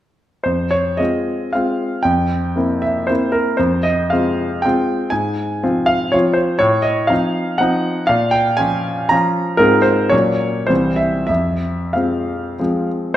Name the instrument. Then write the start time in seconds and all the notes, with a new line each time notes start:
grand piano
0.44 F2 C5
0.71 C#5
0.97 G#3 C4 F4 D#5
1.53 G#3 C4 F4 F5
2.03 F2 G5
2.56 A#3 C4 E4
2.82 E5
3.07 A#3 C4 E4 C5
3.32 A#4
3.57 F2 C5
3.83 D#5
4.10 G#3 C4 F4 F5
4.62 G#3 C4 F4 G5
5.10 G#2 G#5
5.63 F3 C4 F4
5.86 F5
6.12 F3 C4 F4 C#5
6.33 C5
6.59 A2 C#5
6.82 D#5
7.07 F3 C4 D#4 F5
7.58 F3 C4 D#4 F#5
8.07 A#2 F5
8.31 G5
8.57 F3 C#4 F4 G#5
9.09 F3 C#4 F4 A#5
9.57 G#2 G#3 C4 F4 A#4
9.82 C5
10.09 A#2 F#3 A#3 C#4 C#5
10.67 C2 E3 G3 C4 C5
10.96 E5
11.27 F2 E5
11.93 F3 G#3 C4 F5
12.59 F3 G#3 C4